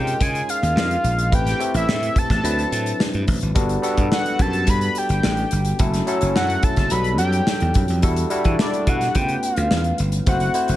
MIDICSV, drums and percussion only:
0, 0, Header, 1, 2, 480
1, 0, Start_track
1, 0, Tempo, 559180
1, 1134, Time_signature, 4, 2, 24, 8
1, 9241, End_track
2, 0, Start_track
2, 0, Title_t, "Drums"
2, 61, Note_on_c, 9, 42, 45
2, 147, Note_off_c, 9, 42, 0
2, 177, Note_on_c, 9, 36, 85
2, 177, Note_on_c, 9, 42, 89
2, 262, Note_off_c, 9, 36, 0
2, 263, Note_off_c, 9, 42, 0
2, 301, Note_on_c, 9, 42, 40
2, 387, Note_off_c, 9, 42, 0
2, 421, Note_on_c, 9, 42, 64
2, 506, Note_off_c, 9, 42, 0
2, 543, Note_on_c, 9, 42, 45
2, 629, Note_off_c, 9, 42, 0
2, 662, Note_on_c, 9, 38, 108
2, 748, Note_off_c, 9, 38, 0
2, 780, Note_on_c, 9, 42, 43
2, 866, Note_off_c, 9, 42, 0
2, 897, Note_on_c, 9, 42, 69
2, 983, Note_off_c, 9, 42, 0
2, 1018, Note_on_c, 9, 42, 51
2, 1104, Note_off_c, 9, 42, 0
2, 1137, Note_on_c, 9, 36, 98
2, 1138, Note_on_c, 9, 42, 85
2, 1223, Note_off_c, 9, 36, 0
2, 1224, Note_off_c, 9, 42, 0
2, 1258, Note_on_c, 9, 42, 51
2, 1262, Note_on_c, 9, 38, 29
2, 1344, Note_off_c, 9, 42, 0
2, 1348, Note_off_c, 9, 38, 0
2, 1377, Note_on_c, 9, 42, 61
2, 1463, Note_off_c, 9, 42, 0
2, 1497, Note_on_c, 9, 42, 45
2, 1583, Note_off_c, 9, 42, 0
2, 1620, Note_on_c, 9, 38, 102
2, 1705, Note_off_c, 9, 38, 0
2, 1740, Note_on_c, 9, 42, 56
2, 1826, Note_off_c, 9, 42, 0
2, 1853, Note_on_c, 9, 36, 95
2, 1859, Note_on_c, 9, 42, 66
2, 1939, Note_off_c, 9, 36, 0
2, 1945, Note_off_c, 9, 42, 0
2, 1974, Note_on_c, 9, 36, 90
2, 1978, Note_on_c, 9, 42, 42
2, 1984, Note_on_c, 9, 38, 33
2, 2060, Note_off_c, 9, 36, 0
2, 2064, Note_off_c, 9, 42, 0
2, 2070, Note_off_c, 9, 38, 0
2, 2100, Note_on_c, 9, 42, 97
2, 2186, Note_off_c, 9, 42, 0
2, 2221, Note_on_c, 9, 42, 42
2, 2307, Note_off_c, 9, 42, 0
2, 2338, Note_on_c, 9, 42, 61
2, 2424, Note_off_c, 9, 42, 0
2, 2456, Note_on_c, 9, 42, 44
2, 2542, Note_off_c, 9, 42, 0
2, 2577, Note_on_c, 9, 38, 104
2, 2662, Note_off_c, 9, 38, 0
2, 2691, Note_on_c, 9, 42, 39
2, 2776, Note_off_c, 9, 42, 0
2, 2812, Note_on_c, 9, 46, 68
2, 2816, Note_on_c, 9, 36, 92
2, 2898, Note_off_c, 9, 46, 0
2, 2902, Note_off_c, 9, 36, 0
2, 2926, Note_on_c, 9, 42, 46
2, 3012, Note_off_c, 9, 42, 0
2, 3051, Note_on_c, 9, 42, 87
2, 3053, Note_on_c, 9, 36, 103
2, 3137, Note_off_c, 9, 42, 0
2, 3139, Note_off_c, 9, 36, 0
2, 3170, Note_on_c, 9, 42, 54
2, 3256, Note_off_c, 9, 42, 0
2, 3291, Note_on_c, 9, 42, 63
2, 3377, Note_off_c, 9, 42, 0
2, 3410, Note_on_c, 9, 42, 46
2, 3413, Note_on_c, 9, 36, 75
2, 3496, Note_off_c, 9, 42, 0
2, 3498, Note_off_c, 9, 36, 0
2, 3534, Note_on_c, 9, 38, 106
2, 3620, Note_off_c, 9, 38, 0
2, 3655, Note_on_c, 9, 42, 54
2, 3740, Note_off_c, 9, 42, 0
2, 3771, Note_on_c, 9, 36, 101
2, 3771, Note_on_c, 9, 42, 65
2, 3857, Note_off_c, 9, 36, 0
2, 3857, Note_off_c, 9, 42, 0
2, 3891, Note_on_c, 9, 42, 47
2, 3977, Note_off_c, 9, 42, 0
2, 4007, Note_on_c, 9, 42, 93
2, 4013, Note_on_c, 9, 36, 80
2, 4093, Note_off_c, 9, 42, 0
2, 4099, Note_off_c, 9, 36, 0
2, 4130, Note_on_c, 9, 42, 45
2, 4216, Note_off_c, 9, 42, 0
2, 4249, Note_on_c, 9, 42, 61
2, 4335, Note_off_c, 9, 42, 0
2, 4370, Note_on_c, 9, 42, 39
2, 4456, Note_off_c, 9, 42, 0
2, 4493, Note_on_c, 9, 38, 103
2, 4579, Note_off_c, 9, 38, 0
2, 4609, Note_on_c, 9, 42, 42
2, 4695, Note_off_c, 9, 42, 0
2, 4729, Note_on_c, 9, 42, 63
2, 4815, Note_off_c, 9, 42, 0
2, 4847, Note_on_c, 9, 42, 53
2, 4933, Note_off_c, 9, 42, 0
2, 4970, Note_on_c, 9, 42, 82
2, 4975, Note_on_c, 9, 36, 90
2, 5056, Note_off_c, 9, 42, 0
2, 5061, Note_off_c, 9, 36, 0
2, 5095, Note_on_c, 9, 42, 54
2, 5099, Note_on_c, 9, 38, 30
2, 5181, Note_off_c, 9, 42, 0
2, 5185, Note_off_c, 9, 38, 0
2, 5211, Note_on_c, 9, 42, 55
2, 5297, Note_off_c, 9, 42, 0
2, 5329, Note_on_c, 9, 42, 50
2, 5415, Note_off_c, 9, 42, 0
2, 5457, Note_on_c, 9, 38, 113
2, 5542, Note_off_c, 9, 38, 0
2, 5577, Note_on_c, 9, 42, 55
2, 5663, Note_off_c, 9, 42, 0
2, 5688, Note_on_c, 9, 42, 68
2, 5692, Note_on_c, 9, 36, 101
2, 5774, Note_off_c, 9, 42, 0
2, 5778, Note_off_c, 9, 36, 0
2, 5806, Note_on_c, 9, 42, 48
2, 5811, Note_on_c, 9, 38, 34
2, 5813, Note_on_c, 9, 36, 83
2, 5892, Note_off_c, 9, 42, 0
2, 5897, Note_off_c, 9, 38, 0
2, 5899, Note_off_c, 9, 36, 0
2, 5924, Note_on_c, 9, 42, 93
2, 6010, Note_off_c, 9, 42, 0
2, 6045, Note_on_c, 9, 42, 40
2, 6131, Note_off_c, 9, 42, 0
2, 6164, Note_on_c, 9, 42, 62
2, 6250, Note_off_c, 9, 42, 0
2, 6288, Note_on_c, 9, 42, 43
2, 6374, Note_off_c, 9, 42, 0
2, 6411, Note_on_c, 9, 38, 93
2, 6496, Note_off_c, 9, 38, 0
2, 6526, Note_on_c, 9, 42, 42
2, 6612, Note_off_c, 9, 42, 0
2, 6645, Note_on_c, 9, 42, 71
2, 6656, Note_on_c, 9, 36, 85
2, 6731, Note_off_c, 9, 42, 0
2, 6742, Note_off_c, 9, 36, 0
2, 6765, Note_on_c, 9, 42, 51
2, 6851, Note_off_c, 9, 42, 0
2, 6888, Note_on_c, 9, 42, 87
2, 6894, Note_on_c, 9, 36, 95
2, 6973, Note_off_c, 9, 42, 0
2, 6980, Note_off_c, 9, 36, 0
2, 7008, Note_on_c, 9, 42, 54
2, 7094, Note_off_c, 9, 42, 0
2, 7127, Note_on_c, 9, 42, 60
2, 7213, Note_off_c, 9, 42, 0
2, 7248, Note_on_c, 9, 42, 51
2, 7254, Note_on_c, 9, 36, 78
2, 7334, Note_off_c, 9, 42, 0
2, 7340, Note_off_c, 9, 36, 0
2, 7375, Note_on_c, 9, 38, 119
2, 7461, Note_off_c, 9, 38, 0
2, 7499, Note_on_c, 9, 42, 52
2, 7584, Note_off_c, 9, 42, 0
2, 7614, Note_on_c, 9, 36, 91
2, 7614, Note_on_c, 9, 42, 67
2, 7700, Note_off_c, 9, 36, 0
2, 7700, Note_off_c, 9, 42, 0
2, 7734, Note_on_c, 9, 42, 42
2, 7739, Note_on_c, 9, 38, 33
2, 7820, Note_off_c, 9, 42, 0
2, 7825, Note_off_c, 9, 38, 0
2, 7852, Note_on_c, 9, 42, 95
2, 7856, Note_on_c, 9, 36, 84
2, 7938, Note_off_c, 9, 42, 0
2, 7942, Note_off_c, 9, 36, 0
2, 7971, Note_on_c, 9, 42, 42
2, 8056, Note_off_c, 9, 42, 0
2, 8093, Note_on_c, 9, 42, 60
2, 8179, Note_off_c, 9, 42, 0
2, 8210, Note_on_c, 9, 42, 43
2, 8296, Note_off_c, 9, 42, 0
2, 8333, Note_on_c, 9, 38, 105
2, 8419, Note_off_c, 9, 38, 0
2, 8449, Note_on_c, 9, 42, 41
2, 8535, Note_off_c, 9, 42, 0
2, 8569, Note_on_c, 9, 42, 68
2, 8654, Note_off_c, 9, 42, 0
2, 8687, Note_on_c, 9, 42, 52
2, 8773, Note_off_c, 9, 42, 0
2, 8812, Note_on_c, 9, 42, 84
2, 8814, Note_on_c, 9, 36, 95
2, 8897, Note_off_c, 9, 42, 0
2, 8900, Note_off_c, 9, 36, 0
2, 8929, Note_on_c, 9, 42, 53
2, 9014, Note_off_c, 9, 42, 0
2, 9048, Note_on_c, 9, 42, 59
2, 9134, Note_off_c, 9, 42, 0
2, 9167, Note_on_c, 9, 42, 49
2, 9241, Note_off_c, 9, 42, 0
2, 9241, End_track
0, 0, End_of_file